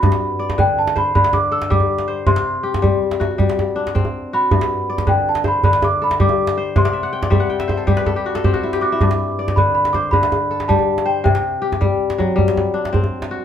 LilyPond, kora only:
<<
  \new Staff \with { instrumentName = "Kora" } { \time 12/8 \key g \major \tempo 4. = 107 << { fis'8 r8 d''4. c''4. a'4. c''8~ | c''8 r8 g'4. fis'4. d'4. fis'8~ | fis'8 r8 d''4. c''4. a'4. c''8~ | c''8 r1 r4. |
r4 d''4. c''4. a'4. c''8~ | c''8 r8 g'4. fis4. d'4. fis'8 | } \\ { r1. | r1. | r1. | r16 d''16 e''16 fis''16 g''16 d''16 e''16 fis''16 g''16 e''16 c''16 a'16 g'16 b'16 a'16 g'16 fis'16 a'16 g'16 fis'16 e'16 g'16 fis'16 e'16~ |
e'16 r1 r4. r16 | r1. | } >> }
  \new Staff \with { instrumentName = "Kora" } { \clef bass \time 12/8 \key g \major g,4 r8 d4 r8 d4 r8 g4 r8 | c4 r8 g4 r8 g4 r8 c'4 r8 | g,4 r8 d4 r8 d4 r8 g4 r8 | c4 r8 g4 r8 g4 r8 c'4 r8 |
g,4 r8 d4 r8 d4 r8 g4 r8 | c4 r8 g4 r8 g4 r8 c'4 r8 | }
>>